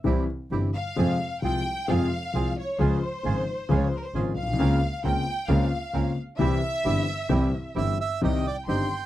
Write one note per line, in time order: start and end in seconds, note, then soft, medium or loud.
0.04 0.24 C2 medium
0.04 0.24 C3 medium
0.04 0.24 E3 medium
0.04 0.24 G3 medium
0.04 0.24 C4 medium
0.04 0.24 E4 medium
0.04 0.25 G4 medium
0.51 0.70 G1 medium
0.51 0.71 G1 soft
0.51 0.71 G2 soft
0.51 0.70 C3 soft
0.51 0.71 E3 soft
0.51 0.71 G3 soft
0.51 0.71 C4 soft
0.51 0.71 E4 soft
0.51 0.71 G4 soft
0.74 1.39 F5 medium
0.96 1.16 F2 medium
0.96 1.16 C3 medium
0.96 1.16 F3 medium
0.96 1.16 G#3 medium
0.96 1.16 C4 medium
0.96 1.16 F4 medium
0.96 1.17 G#4 medium
1.42 1.62 C2 soft
1.42 1.62 C2 medium
1.42 1.62 C3 soft
1.42 1.62 F3 soft
1.42 1.62 G#3 soft
1.42 1.62 C4 soft
1.42 1.62 F4 soft
1.42 1.62 G#4 soft
1.42 1.89 G5 medium
1.88 2.07 F2 medium
1.88 2.08 F2 medium
1.88 2.07 C3 medium
1.88 2.07 F3 medium
1.88 2.07 G#3 medium
1.88 2.07 C4 medium
1.88 2.07 F4 medium
1.88 2.08 F4 medium
1.88 2.08 G#4 medium
1.88 2.57 F5 medium
2.33 2.53 C2 soft
2.33 2.53 C2 medium
2.33 2.53 C3 soft
2.33 2.53 F3 soft
2.33 2.53 G#3 soft
2.33 2.53 C4 soft
2.33 2.53 F4 soft
2.33 2.53 G#4 soft
2.59 2.79 C#5 medium
2.79 2.98 C#2 medium
2.79 2.98 C#3 medium
2.79 2.98 F3 medium
2.79 2.98 G#3 medium
2.79 2.98 C#4 medium
2.79 2.98 F4 medium
2.79 2.99 F4 medium
2.79 2.99 G#4 medium
2.79 3.79 C5 medium
3.23 3.43 G#1 soft
3.23 3.43 G#1 medium
3.23 3.43 G#2 medium
3.23 3.43 C#3 soft
3.23 3.43 F3 soft
3.23 3.43 G#3 soft
3.23 3.43 C#4 soft
3.23 3.43 F4 medium
3.23 3.44 F4 soft
3.23 3.44 G#4 soft
3.69 3.88 C#2 medium
3.69 3.88 C#3 medium
3.69 3.88 F3 medium
3.69 3.88 G#3 medium
3.69 3.88 C#4 medium
3.69 3.88 F4 medium
3.69 3.88 G#4 medium
3.77 3.87 C#5 medium
3.87 3.96 C5 medium
3.96 4.05 A#4 medium
4.05 4.14 C5 medium
4.14 4.33 G#1 medium
4.14 4.33 G#2 soft
4.14 4.33 C#3 soft
4.14 4.33 F3 soft
4.14 4.33 G#3 soft
4.14 4.33 C#4 soft
4.14 4.33 F4 soft
4.14 4.33 G#4 medium
4.36 4.58 B1 medium
4.36 5.00 F5 medium
4.42 4.48 A#1 medium
4.48 4.53 B1 medium
4.54 4.59 C2 medium
4.59 4.78 C#2 medium
4.59 4.78 C#3 medium
4.59 4.78 A#3 medium
4.59 4.78 C4 medium
4.59 4.78 C#4 medium
4.59 4.78 F4 medium
4.59 4.78 A#4 medium
5.04 5.23 C#2 medium
5.04 5.23 C#3 medium
5.04 5.23 A#3 soft
5.04 5.23 C4 soft
5.04 5.23 C#4 soft
5.04 5.23 F4 soft
5.04 5.23 A#4 soft
5.04 5.49 G5 loud
5.48 5.68 C#2 medium
5.48 5.68 C#3 medium
5.48 5.68 A#3 medium
5.48 5.67 C4 medium
5.48 5.68 C4 medium
5.48 5.68 C#4 medium
5.48 5.68 F4 medium
5.48 5.68 A#4 medium
5.48 6.17 F5 medium
5.93 6.13 C#2 medium
5.93 6.12 C#3 soft
5.93 6.13 A#3 soft
5.93 6.13 C4 soft
5.93 6.13 C#4 soft
5.93 6.13 F4 soft
5.93 6.13 A#4 medium
6.38 6.58 C2 medium
6.38 6.58 C3 medium
6.38 6.58 E3 medium
6.38 6.58 G3 medium
6.38 6.58 C4 medium
6.38 6.58 E4 medium
6.38 6.58 G4 medium
6.38 7.71 E5 loud
6.84 7.04 G1 medium
6.84 7.04 G2 medium
6.84 7.03 E3 soft
6.84 7.03 G3 soft
6.84 7.03 C4 soft
6.84 7.04 C4 soft
6.84 7.03 E4 soft
6.84 7.03 G4 medium
6.84 7.04 G4 soft
7.29 7.49 C2 medium
7.29 7.49 C2 loud
7.29 7.49 C3 medium
7.29 7.49 E3 medium
7.29 7.49 G3 medium
7.29 7.48 C4 medium
7.29 7.49 C4 medium
7.29 7.49 E4 medium
7.29 7.49 G4 medium
7.75 7.95 G1 medium
7.75 7.95 G1 soft
7.75 7.95 G2 medium
7.75 7.95 E3 soft
7.75 7.95 G3 soft
7.75 7.95 C4 soft
7.75 7.95 E4 soft
7.75 7.95 G4 soft
7.75 7.98 E5 medium
8.01 8.21 E5 medium
8.22 8.41 C2 medium
8.22 8.41 C3 medium
8.22 8.41 D#3 medium
8.22 8.41 G3 medium
8.22 8.41 C4 medium
8.22 8.41 D#4 medium
8.22 8.41 G4 medium
8.22 8.46 D#5 medium
8.22 8.64 G5 medium
8.47 8.57 D5 medium
8.68 8.86 G1 medium
8.68 8.86 G2 medium
8.68 8.86 D#3 soft
8.68 8.87 G3 soft
8.68 8.86 C4 soft
8.68 8.87 C4 soft
8.68 8.86 D#4 soft
8.68 8.87 G4 soft
8.68 9.06 G5 medium
8.68 9.06 C6 medium